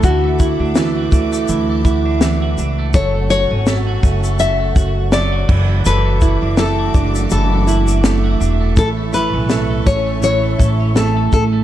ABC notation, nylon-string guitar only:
X:1
M:4/4
L:1/8
Q:"Swing 16ths" 1/4=82
K:Dlyd
V:1 name="Nylon-string guitar"
F4 z4 | c c3 e2 d2 | B2 A2 A3 z | A B2 c c2 A A |]